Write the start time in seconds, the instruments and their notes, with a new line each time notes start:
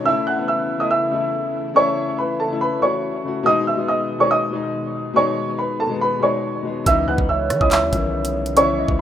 0.04 grand piano C#3 A3 E5 E6, analog synth pad C#3 E3 A3 E4
0.08 grand piano E4
0.27 grand piano F#5 F#6
0.34 grand piano C#3 A3
0.39 grand piano B3
0.48 grand piano E5 E6
0.77 grand piano C#3 A3 D#6
0.81 grand piano E4 D#5
0.91 grand piano E5 E6
1.09 grand piano C#3 A3
1.14 grand piano E4
1.74 grand piano C#3 A3 C#5 C#6
1.79 grand piano E4
2.18 grand piano B4 B5
2.40 grand piano A4 A5
2.48 grand piano C#3 A3
2.53 grand piano E4
2.61 grand piano B4 B5
2.79 grand piano C#3 A3 C#5 C#6
2.84 grand piano F#4
3.23 grand piano C#3 A3
3.28 grand piano F#4
3.43 grand piano B2 G#3 D#5 D#6, analog synth pad B2 D#3 G#3 B3
3.48 grand piano D#4
3.67 grand piano E5 E6
3.76 grand piano B2 G#3
3.80 grand piano B3
3.88 grand piano D#5 D#6
4.18 grand piano B2 G#3 C#5 C#6
4.23 grand piano D#4
4.31 grand piano D#5 D#6
4.50 grand piano B2 G#3
4.55 grand piano D#4
5.13 grand piano B2 G#3 C#5 C#6
5.18 grand piano D#4
5.59 grand piano B4 B5
5.80 grand piano A4 A5
5.87 grand piano B2 G#3
5.92 grand piano B3
6.01 grand piano B4 B5
6.19 grand piano B2 G#3 C#6
6.23 grand piano D#4 C#5
6.62 grand piano B2 G#3
6.67 grand piano B3
6.84 808-style bass C#2, grand piano C#3 E3 E5 E6, analog synth pad C#3, kick, closed hi-hat
6.89 grand piano D#4
7.08 808-style bass C#2, soft synth lead B4, grand piano F#5 F#6
7.16 808-style bass C#2, grand piano C#3 E3, kick
7.21 grand piano D#4
7.29 808-style bass C#2, soft synth lead C#5, grand piano E5 E6
7.50 808-style bass E3, cross-stick, closed hi-hat
7.58 808-style bass C#2, grand piano C#3 E3 D#5 D#6, kick
7.63 grand piano E4
7.71 grand piano E5 E6, clap, closed hi-hat
7.82 808-style bass D#2
7.90 808-style bass B1, grand piano C#3 E3, kick, closed hi-hat
7.95 grand piano D#3
8.25 closed hi-hat
8.46 closed hi-hat
8.55 grand piano C#3 E3 C#5 C#6, closed hi-hat
8.60 grand piano E4
8.78 soft synth lead D#5
8.88 808-style bass C#2, kick